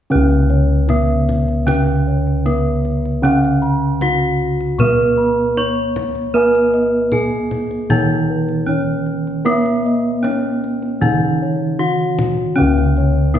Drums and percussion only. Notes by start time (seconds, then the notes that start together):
0.30 kendang slap
0.50 kendang slap
0.89 kendang high, kendang low
1.29 kendang slap, kendang high, kendang low
1.48 kendang slap
1.68 kendang high, kendang low
2.27 kendang slap
2.46 kendang low
2.85 kendang slap
3.05 kendang slap
3.25 kendang high
3.45 kendang slap
3.63 kendang slap
4.01 kendang high
4.41 kendang slap
4.60 kendang slap
4.79 kendang low
5.96 kendang slap, kendang high, kendang low
6.15 kendang slap
6.55 kendang slap
6.74 kendang slap
7.12 kendang high, kendang low
7.51 kendang high, kendang low
7.71 kendang slap
7.90 kendang high, kendang low
8.49 kendang slap
8.68 kendang low
9.06 kendang slap
9.27 kendang slap
9.46 kendang high
9.66 kendang slap
9.86 kendang slap
10.24 kendang slap, kendang high
10.64 kendang slap
10.82 kendang slap
11.02 kendang low
12.19 kendang slap, kendang high, kendang low
12.78 kendang slap
12.97 kendang slap
13.35 kendang high, kendang low